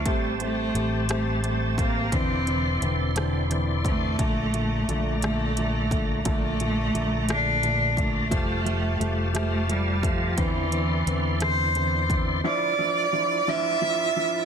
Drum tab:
HH |xxxxxx|xxxxxx|xxxxxx|xxxxxx|
SD |---r--|---rr-|---r--|---r--|
BD |o----o|o----o|o----o|o----o|

HH |xxxxxx|xxxxxx|------|
SD |---r--|---rr-|------|
BD |o----o|o----o|------|